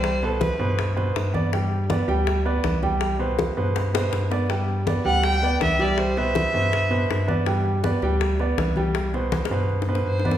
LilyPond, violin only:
\new Staff \with { instrumentName = "Violin" } { \time 4/4 \key c \lydian \tempo 4 = 162 c''8 a'8 b'4 r2 | r1 | r1 | r4. fis''8 g''4 e''8 d''8 |
c''8 e''2. r8 | r1 | r2. c''4 | }